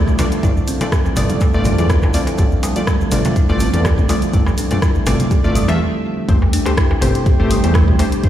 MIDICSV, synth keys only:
0, 0, Header, 1, 2, 480
1, 0, Start_track
1, 0, Tempo, 487805
1, 427, Time_signature, 4, 2, 24, 8
1, 8160, End_track
2, 0, Start_track
2, 0, Title_t, "Synth keys"
2, 0, Program_c, 0, 88
2, 189, Note_on_c, 0, 65, 70
2, 189, Note_on_c, 0, 74, 85
2, 190, Note_on_c, 0, 57, 75
2, 251, Note_off_c, 0, 65, 0
2, 251, Note_off_c, 0, 74, 0
2, 252, Note_off_c, 0, 57, 0
2, 432, Note_on_c, 0, 57, 71
2, 432, Note_on_c, 0, 74, 79
2, 433, Note_on_c, 0, 65, 65
2, 493, Note_off_c, 0, 57, 0
2, 493, Note_off_c, 0, 65, 0
2, 493, Note_off_c, 0, 74, 0
2, 799, Note_on_c, 0, 57, 77
2, 799, Note_on_c, 0, 65, 71
2, 799, Note_on_c, 0, 74, 84
2, 852, Note_off_c, 0, 57, 0
2, 852, Note_off_c, 0, 65, 0
2, 852, Note_off_c, 0, 74, 0
2, 1149, Note_on_c, 0, 57, 73
2, 1150, Note_on_c, 0, 65, 68
2, 1150, Note_on_c, 0, 74, 83
2, 1486, Note_off_c, 0, 57, 0
2, 1487, Note_off_c, 0, 65, 0
2, 1487, Note_off_c, 0, 74, 0
2, 1519, Note_on_c, 0, 57, 91
2, 1519, Note_on_c, 0, 74, 103
2, 1520, Note_on_c, 0, 65, 81
2, 1727, Note_off_c, 0, 57, 0
2, 1727, Note_off_c, 0, 65, 0
2, 1727, Note_off_c, 0, 74, 0
2, 1755, Note_on_c, 0, 57, 72
2, 1755, Note_on_c, 0, 65, 68
2, 1756, Note_on_c, 0, 74, 86
2, 1843, Note_off_c, 0, 57, 0
2, 1843, Note_off_c, 0, 65, 0
2, 1843, Note_off_c, 0, 74, 0
2, 2107, Note_on_c, 0, 57, 74
2, 2108, Note_on_c, 0, 65, 71
2, 2108, Note_on_c, 0, 74, 81
2, 2170, Note_off_c, 0, 57, 0
2, 2171, Note_off_c, 0, 65, 0
2, 2171, Note_off_c, 0, 74, 0
2, 2349, Note_on_c, 0, 57, 72
2, 2349, Note_on_c, 0, 65, 65
2, 2349, Note_on_c, 0, 74, 81
2, 2411, Note_off_c, 0, 57, 0
2, 2411, Note_off_c, 0, 65, 0
2, 2411, Note_off_c, 0, 74, 0
2, 2716, Note_on_c, 0, 57, 77
2, 2717, Note_on_c, 0, 65, 71
2, 2717, Note_on_c, 0, 74, 90
2, 2770, Note_off_c, 0, 57, 0
2, 2771, Note_off_c, 0, 65, 0
2, 2771, Note_off_c, 0, 74, 0
2, 3070, Note_on_c, 0, 65, 67
2, 3071, Note_on_c, 0, 57, 74
2, 3071, Note_on_c, 0, 74, 81
2, 3407, Note_off_c, 0, 57, 0
2, 3407, Note_off_c, 0, 65, 0
2, 3407, Note_off_c, 0, 74, 0
2, 3438, Note_on_c, 0, 57, 90
2, 3438, Note_on_c, 0, 65, 81
2, 3438, Note_on_c, 0, 74, 105
2, 3646, Note_off_c, 0, 57, 0
2, 3646, Note_off_c, 0, 65, 0
2, 3646, Note_off_c, 0, 74, 0
2, 3675, Note_on_c, 0, 57, 78
2, 3675, Note_on_c, 0, 74, 85
2, 3676, Note_on_c, 0, 65, 69
2, 3762, Note_off_c, 0, 57, 0
2, 3762, Note_off_c, 0, 74, 0
2, 3763, Note_off_c, 0, 65, 0
2, 4028, Note_on_c, 0, 74, 86
2, 4029, Note_on_c, 0, 57, 76
2, 4029, Note_on_c, 0, 65, 71
2, 4091, Note_off_c, 0, 57, 0
2, 4091, Note_off_c, 0, 65, 0
2, 4091, Note_off_c, 0, 74, 0
2, 4267, Note_on_c, 0, 57, 70
2, 4267, Note_on_c, 0, 65, 67
2, 4267, Note_on_c, 0, 74, 83
2, 4330, Note_off_c, 0, 57, 0
2, 4330, Note_off_c, 0, 65, 0
2, 4330, Note_off_c, 0, 74, 0
2, 4635, Note_on_c, 0, 65, 72
2, 4636, Note_on_c, 0, 57, 76
2, 4637, Note_on_c, 0, 74, 85
2, 4690, Note_off_c, 0, 57, 0
2, 4690, Note_off_c, 0, 65, 0
2, 4691, Note_off_c, 0, 74, 0
2, 4987, Note_on_c, 0, 57, 71
2, 4987, Note_on_c, 0, 65, 69
2, 4987, Note_on_c, 0, 74, 83
2, 5325, Note_off_c, 0, 57, 0
2, 5325, Note_off_c, 0, 65, 0
2, 5325, Note_off_c, 0, 74, 0
2, 5355, Note_on_c, 0, 74, 102
2, 5356, Note_on_c, 0, 57, 96
2, 5356, Note_on_c, 0, 65, 84
2, 5564, Note_off_c, 0, 74, 0
2, 5565, Note_off_c, 0, 57, 0
2, 5565, Note_off_c, 0, 65, 0
2, 5594, Note_on_c, 0, 57, 94
2, 5595, Note_on_c, 0, 65, 91
2, 5595, Note_on_c, 0, 76, 109
2, 5706, Note_off_c, 0, 57, 0
2, 5706, Note_off_c, 0, 76, 0
2, 5707, Note_off_c, 0, 65, 0
2, 6186, Note_on_c, 0, 72, 85
2, 6187, Note_on_c, 0, 57, 73
2, 6187, Note_on_c, 0, 67, 66
2, 6250, Note_off_c, 0, 57, 0
2, 6250, Note_off_c, 0, 67, 0
2, 6250, Note_off_c, 0, 72, 0
2, 6554, Note_on_c, 0, 57, 80
2, 6555, Note_on_c, 0, 67, 75
2, 6555, Note_on_c, 0, 72, 89
2, 6610, Note_off_c, 0, 57, 0
2, 6610, Note_off_c, 0, 67, 0
2, 6610, Note_off_c, 0, 72, 0
2, 6906, Note_on_c, 0, 57, 74
2, 6906, Note_on_c, 0, 72, 81
2, 6907, Note_on_c, 0, 67, 70
2, 7245, Note_off_c, 0, 57, 0
2, 7245, Note_off_c, 0, 67, 0
2, 7245, Note_off_c, 0, 72, 0
2, 7277, Note_on_c, 0, 57, 98
2, 7278, Note_on_c, 0, 67, 87
2, 7278, Note_on_c, 0, 72, 99
2, 7486, Note_off_c, 0, 57, 0
2, 7486, Note_off_c, 0, 67, 0
2, 7486, Note_off_c, 0, 72, 0
2, 7517, Note_on_c, 0, 57, 77
2, 7517, Note_on_c, 0, 67, 69
2, 7517, Note_on_c, 0, 72, 85
2, 7603, Note_off_c, 0, 67, 0
2, 7604, Note_off_c, 0, 57, 0
2, 7604, Note_off_c, 0, 72, 0
2, 7867, Note_on_c, 0, 72, 90
2, 7868, Note_on_c, 0, 57, 77
2, 7868, Note_on_c, 0, 67, 71
2, 7930, Note_off_c, 0, 72, 0
2, 7931, Note_off_c, 0, 57, 0
2, 7931, Note_off_c, 0, 67, 0
2, 8107, Note_on_c, 0, 57, 73
2, 8108, Note_on_c, 0, 67, 64
2, 8108, Note_on_c, 0, 72, 82
2, 8160, Note_off_c, 0, 57, 0
2, 8160, Note_off_c, 0, 67, 0
2, 8160, Note_off_c, 0, 72, 0
2, 8160, End_track
0, 0, End_of_file